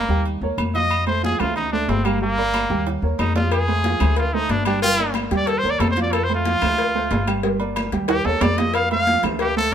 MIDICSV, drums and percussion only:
0, 0, Header, 1, 2, 480
1, 0, Start_track
1, 0, Key_signature, -1, "major"
1, 0, Tempo, 326442
1, 1340, Time_signature, 4, 2, 24, 8
1, 14328, End_track
2, 0, Start_track
2, 0, Title_t, "Drums"
2, 139, Note_on_c, 9, 63, 37
2, 286, Note_off_c, 9, 63, 0
2, 374, Note_on_c, 9, 68, 64
2, 377, Note_on_c, 9, 63, 38
2, 521, Note_off_c, 9, 68, 0
2, 524, Note_off_c, 9, 63, 0
2, 616, Note_on_c, 9, 63, 34
2, 763, Note_off_c, 9, 63, 0
2, 855, Note_on_c, 9, 68, 114
2, 858, Note_on_c, 9, 75, 68
2, 863, Note_on_c, 9, 63, 86
2, 1003, Note_off_c, 9, 68, 0
2, 1005, Note_off_c, 9, 75, 0
2, 1010, Note_off_c, 9, 63, 0
2, 1098, Note_on_c, 9, 63, 83
2, 1101, Note_on_c, 9, 68, 75
2, 1245, Note_off_c, 9, 63, 0
2, 1249, Note_off_c, 9, 68, 0
2, 1331, Note_on_c, 9, 68, 117
2, 1341, Note_on_c, 9, 75, 73
2, 1351, Note_on_c, 9, 63, 40
2, 1478, Note_off_c, 9, 68, 0
2, 1488, Note_off_c, 9, 75, 0
2, 1498, Note_off_c, 9, 63, 0
2, 1569, Note_on_c, 9, 68, 84
2, 1588, Note_on_c, 9, 63, 36
2, 1716, Note_off_c, 9, 68, 0
2, 1735, Note_off_c, 9, 63, 0
2, 1830, Note_on_c, 9, 63, 103
2, 1977, Note_off_c, 9, 63, 0
2, 2052, Note_on_c, 9, 68, 91
2, 2057, Note_on_c, 9, 75, 67
2, 2070, Note_on_c, 9, 63, 39
2, 2070, Note_on_c, 9, 64, 90
2, 2199, Note_off_c, 9, 68, 0
2, 2204, Note_off_c, 9, 75, 0
2, 2217, Note_off_c, 9, 63, 0
2, 2217, Note_off_c, 9, 64, 0
2, 2290, Note_on_c, 9, 68, 83
2, 2307, Note_on_c, 9, 63, 37
2, 2307, Note_on_c, 9, 64, 82
2, 2437, Note_off_c, 9, 68, 0
2, 2454, Note_off_c, 9, 63, 0
2, 2454, Note_off_c, 9, 64, 0
2, 2541, Note_on_c, 9, 63, 33
2, 2688, Note_off_c, 9, 63, 0
2, 2777, Note_on_c, 9, 63, 83
2, 2780, Note_on_c, 9, 66, 77
2, 2780, Note_on_c, 9, 68, 88
2, 2924, Note_off_c, 9, 63, 0
2, 2927, Note_off_c, 9, 66, 0
2, 2927, Note_off_c, 9, 68, 0
2, 3013, Note_on_c, 9, 63, 78
2, 3013, Note_on_c, 9, 68, 118
2, 3024, Note_on_c, 9, 75, 69
2, 3160, Note_off_c, 9, 63, 0
2, 3160, Note_off_c, 9, 68, 0
2, 3172, Note_off_c, 9, 75, 0
2, 3259, Note_on_c, 9, 63, 40
2, 3406, Note_off_c, 9, 63, 0
2, 3500, Note_on_c, 9, 68, 86
2, 3647, Note_off_c, 9, 68, 0
2, 3730, Note_on_c, 9, 63, 98
2, 3737, Note_on_c, 9, 68, 109
2, 3744, Note_on_c, 9, 75, 70
2, 3877, Note_off_c, 9, 63, 0
2, 3884, Note_off_c, 9, 68, 0
2, 3891, Note_off_c, 9, 75, 0
2, 3967, Note_on_c, 9, 63, 37
2, 4114, Note_off_c, 9, 63, 0
2, 4214, Note_on_c, 9, 63, 36
2, 4214, Note_on_c, 9, 65, 67
2, 4214, Note_on_c, 9, 68, 70
2, 4361, Note_off_c, 9, 63, 0
2, 4361, Note_off_c, 9, 65, 0
2, 4361, Note_off_c, 9, 68, 0
2, 4449, Note_on_c, 9, 63, 35
2, 4596, Note_off_c, 9, 63, 0
2, 4688, Note_on_c, 9, 63, 85
2, 4692, Note_on_c, 9, 66, 77
2, 4692, Note_on_c, 9, 68, 107
2, 4702, Note_on_c, 9, 75, 70
2, 4835, Note_off_c, 9, 63, 0
2, 4839, Note_off_c, 9, 66, 0
2, 4839, Note_off_c, 9, 68, 0
2, 4849, Note_off_c, 9, 75, 0
2, 4933, Note_on_c, 9, 63, 89
2, 4935, Note_on_c, 9, 66, 94
2, 4935, Note_on_c, 9, 68, 73
2, 5080, Note_off_c, 9, 63, 0
2, 5082, Note_off_c, 9, 66, 0
2, 5082, Note_off_c, 9, 68, 0
2, 5168, Note_on_c, 9, 56, 110
2, 5173, Note_on_c, 9, 68, 114
2, 5174, Note_on_c, 9, 63, 40
2, 5176, Note_on_c, 9, 75, 69
2, 5315, Note_off_c, 9, 56, 0
2, 5320, Note_off_c, 9, 68, 0
2, 5321, Note_off_c, 9, 63, 0
2, 5323, Note_off_c, 9, 75, 0
2, 5412, Note_on_c, 9, 68, 86
2, 5416, Note_on_c, 9, 63, 39
2, 5559, Note_off_c, 9, 68, 0
2, 5563, Note_off_c, 9, 63, 0
2, 5648, Note_on_c, 9, 63, 102
2, 5650, Note_on_c, 9, 56, 72
2, 5795, Note_off_c, 9, 63, 0
2, 5797, Note_off_c, 9, 56, 0
2, 5882, Note_on_c, 9, 63, 40
2, 5882, Note_on_c, 9, 64, 89
2, 5884, Note_on_c, 9, 75, 66
2, 5886, Note_on_c, 9, 56, 69
2, 5891, Note_on_c, 9, 68, 103
2, 6029, Note_off_c, 9, 63, 0
2, 6029, Note_off_c, 9, 64, 0
2, 6031, Note_off_c, 9, 75, 0
2, 6033, Note_off_c, 9, 56, 0
2, 6038, Note_off_c, 9, 68, 0
2, 6123, Note_on_c, 9, 56, 107
2, 6125, Note_on_c, 9, 63, 36
2, 6128, Note_on_c, 9, 68, 81
2, 6270, Note_off_c, 9, 56, 0
2, 6272, Note_off_c, 9, 63, 0
2, 6275, Note_off_c, 9, 68, 0
2, 6373, Note_on_c, 9, 63, 30
2, 6520, Note_off_c, 9, 63, 0
2, 6603, Note_on_c, 9, 68, 90
2, 6604, Note_on_c, 9, 63, 78
2, 6609, Note_on_c, 9, 56, 68
2, 6750, Note_off_c, 9, 68, 0
2, 6751, Note_off_c, 9, 63, 0
2, 6756, Note_off_c, 9, 56, 0
2, 6841, Note_on_c, 9, 68, 107
2, 6845, Note_on_c, 9, 75, 69
2, 6852, Note_on_c, 9, 56, 76
2, 6989, Note_off_c, 9, 68, 0
2, 6992, Note_off_c, 9, 75, 0
2, 6999, Note_off_c, 9, 56, 0
2, 7084, Note_on_c, 9, 63, 38
2, 7091, Note_on_c, 9, 56, 120
2, 7231, Note_off_c, 9, 63, 0
2, 7238, Note_off_c, 9, 56, 0
2, 7323, Note_on_c, 9, 63, 34
2, 7327, Note_on_c, 9, 68, 89
2, 7470, Note_off_c, 9, 63, 0
2, 7474, Note_off_c, 9, 68, 0
2, 7555, Note_on_c, 9, 63, 100
2, 7568, Note_on_c, 9, 56, 70
2, 7571, Note_on_c, 9, 68, 101
2, 7581, Note_on_c, 9, 75, 62
2, 7702, Note_off_c, 9, 63, 0
2, 7715, Note_off_c, 9, 56, 0
2, 7718, Note_off_c, 9, 68, 0
2, 7728, Note_off_c, 9, 75, 0
2, 7805, Note_on_c, 9, 63, 40
2, 7810, Note_on_c, 9, 56, 67
2, 7952, Note_off_c, 9, 63, 0
2, 7957, Note_off_c, 9, 56, 0
2, 8043, Note_on_c, 9, 63, 40
2, 8045, Note_on_c, 9, 56, 108
2, 8047, Note_on_c, 9, 68, 68
2, 8190, Note_off_c, 9, 63, 0
2, 8192, Note_off_c, 9, 56, 0
2, 8194, Note_off_c, 9, 68, 0
2, 8287, Note_on_c, 9, 63, 33
2, 8434, Note_off_c, 9, 63, 0
2, 8527, Note_on_c, 9, 63, 88
2, 8532, Note_on_c, 9, 66, 78
2, 8532, Note_on_c, 9, 68, 111
2, 8534, Note_on_c, 9, 56, 72
2, 8543, Note_on_c, 9, 75, 66
2, 8674, Note_off_c, 9, 63, 0
2, 8679, Note_off_c, 9, 66, 0
2, 8679, Note_off_c, 9, 68, 0
2, 8681, Note_off_c, 9, 56, 0
2, 8690, Note_off_c, 9, 75, 0
2, 8766, Note_on_c, 9, 63, 94
2, 8769, Note_on_c, 9, 68, 76
2, 8776, Note_on_c, 9, 56, 72
2, 8913, Note_off_c, 9, 63, 0
2, 8916, Note_off_c, 9, 68, 0
2, 8923, Note_off_c, 9, 56, 0
2, 9007, Note_on_c, 9, 63, 41
2, 9012, Note_on_c, 9, 56, 115
2, 9013, Note_on_c, 9, 68, 114
2, 9016, Note_on_c, 9, 75, 64
2, 9154, Note_off_c, 9, 63, 0
2, 9159, Note_off_c, 9, 56, 0
2, 9160, Note_off_c, 9, 68, 0
2, 9163, Note_off_c, 9, 75, 0
2, 9250, Note_on_c, 9, 63, 33
2, 9251, Note_on_c, 9, 68, 88
2, 9397, Note_off_c, 9, 63, 0
2, 9398, Note_off_c, 9, 68, 0
2, 9490, Note_on_c, 9, 63, 99
2, 9493, Note_on_c, 9, 56, 74
2, 9637, Note_off_c, 9, 63, 0
2, 9640, Note_off_c, 9, 56, 0
2, 9728, Note_on_c, 9, 56, 72
2, 9730, Note_on_c, 9, 68, 92
2, 9735, Note_on_c, 9, 63, 38
2, 9735, Note_on_c, 9, 64, 90
2, 9736, Note_on_c, 9, 75, 71
2, 9875, Note_off_c, 9, 56, 0
2, 9877, Note_off_c, 9, 68, 0
2, 9882, Note_off_c, 9, 63, 0
2, 9882, Note_off_c, 9, 64, 0
2, 9883, Note_off_c, 9, 75, 0
2, 9975, Note_on_c, 9, 56, 105
2, 9975, Note_on_c, 9, 68, 83
2, 9979, Note_on_c, 9, 63, 41
2, 10122, Note_off_c, 9, 56, 0
2, 10122, Note_off_c, 9, 68, 0
2, 10126, Note_off_c, 9, 63, 0
2, 10225, Note_on_c, 9, 63, 32
2, 10372, Note_off_c, 9, 63, 0
2, 10450, Note_on_c, 9, 56, 68
2, 10461, Note_on_c, 9, 66, 75
2, 10461, Note_on_c, 9, 68, 97
2, 10463, Note_on_c, 9, 63, 81
2, 10597, Note_off_c, 9, 56, 0
2, 10608, Note_off_c, 9, 66, 0
2, 10608, Note_off_c, 9, 68, 0
2, 10610, Note_off_c, 9, 63, 0
2, 10696, Note_on_c, 9, 68, 112
2, 10698, Note_on_c, 9, 56, 72
2, 10702, Note_on_c, 9, 75, 72
2, 10843, Note_off_c, 9, 68, 0
2, 10845, Note_off_c, 9, 56, 0
2, 10849, Note_off_c, 9, 75, 0
2, 10931, Note_on_c, 9, 56, 120
2, 11078, Note_off_c, 9, 56, 0
2, 11169, Note_on_c, 9, 68, 94
2, 11186, Note_on_c, 9, 63, 37
2, 11316, Note_off_c, 9, 68, 0
2, 11333, Note_off_c, 9, 63, 0
2, 11411, Note_on_c, 9, 68, 110
2, 11416, Note_on_c, 9, 56, 74
2, 11416, Note_on_c, 9, 75, 67
2, 11424, Note_on_c, 9, 63, 103
2, 11558, Note_off_c, 9, 68, 0
2, 11563, Note_off_c, 9, 56, 0
2, 11563, Note_off_c, 9, 75, 0
2, 11571, Note_off_c, 9, 63, 0
2, 11651, Note_on_c, 9, 56, 70
2, 11669, Note_on_c, 9, 63, 40
2, 11798, Note_off_c, 9, 56, 0
2, 11816, Note_off_c, 9, 63, 0
2, 11882, Note_on_c, 9, 56, 110
2, 11889, Note_on_c, 9, 65, 97
2, 11889, Note_on_c, 9, 68, 61
2, 12029, Note_off_c, 9, 56, 0
2, 12036, Note_off_c, 9, 65, 0
2, 12036, Note_off_c, 9, 68, 0
2, 12126, Note_on_c, 9, 66, 76
2, 12139, Note_on_c, 9, 63, 34
2, 12273, Note_off_c, 9, 66, 0
2, 12286, Note_off_c, 9, 63, 0
2, 12370, Note_on_c, 9, 66, 98
2, 12370, Note_on_c, 9, 68, 111
2, 12373, Note_on_c, 9, 56, 66
2, 12375, Note_on_c, 9, 75, 69
2, 12378, Note_on_c, 9, 63, 85
2, 12517, Note_off_c, 9, 66, 0
2, 12517, Note_off_c, 9, 68, 0
2, 12520, Note_off_c, 9, 56, 0
2, 12523, Note_off_c, 9, 75, 0
2, 12525, Note_off_c, 9, 63, 0
2, 12616, Note_on_c, 9, 66, 76
2, 12616, Note_on_c, 9, 68, 72
2, 12617, Note_on_c, 9, 63, 83
2, 12618, Note_on_c, 9, 56, 74
2, 12764, Note_off_c, 9, 63, 0
2, 12764, Note_off_c, 9, 66, 0
2, 12764, Note_off_c, 9, 68, 0
2, 12765, Note_off_c, 9, 56, 0
2, 12845, Note_on_c, 9, 56, 111
2, 12860, Note_on_c, 9, 75, 69
2, 12861, Note_on_c, 9, 68, 114
2, 12992, Note_off_c, 9, 56, 0
2, 13007, Note_off_c, 9, 75, 0
2, 13008, Note_off_c, 9, 68, 0
2, 13099, Note_on_c, 9, 63, 34
2, 13102, Note_on_c, 9, 68, 87
2, 13246, Note_off_c, 9, 63, 0
2, 13249, Note_off_c, 9, 68, 0
2, 13338, Note_on_c, 9, 63, 101
2, 13339, Note_on_c, 9, 56, 71
2, 13485, Note_off_c, 9, 63, 0
2, 13486, Note_off_c, 9, 56, 0
2, 13573, Note_on_c, 9, 56, 70
2, 13580, Note_on_c, 9, 68, 100
2, 13584, Note_on_c, 9, 63, 39
2, 13584, Note_on_c, 9, 64, 95
2, 13592, Note_on_c, 9, 75, 67
2, 13720, Note_off_c, 9, 56, 0
2, 13727, Note_off_c, 9, 68, 0
2, 13731, Note_off_c, 9, 63, 0
2, 13731, Note_off_c, 9, 64, 0
2, 13739, Note_off_c, 9, 75, 0
2, 13810, Note_on_c, 9, 56, 111
2, 13821, Note_on_c, 9, 68, 83
2, 13827, Note_on_c, 9, 63, 40
2, 13957, Note_off_c, 9, 56, 0
2, 13968, Note_off_c, 9, 68, 0
2, 13974, Note_off_c, 9, 63, 0
2, 14072, Note_on_c, 9, 63, 32
2, 14219, Note_off_c, 9, 63, 0
2, 14328, End_track
0, 0, End_of_file